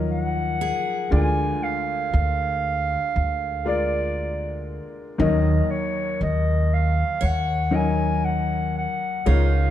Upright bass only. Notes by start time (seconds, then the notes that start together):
Already playing: D#2
1.12 D2
2.13 D2
3.16 D2
5.20 D#2
6.21 D#2
7.22 D#2
9.27 C#2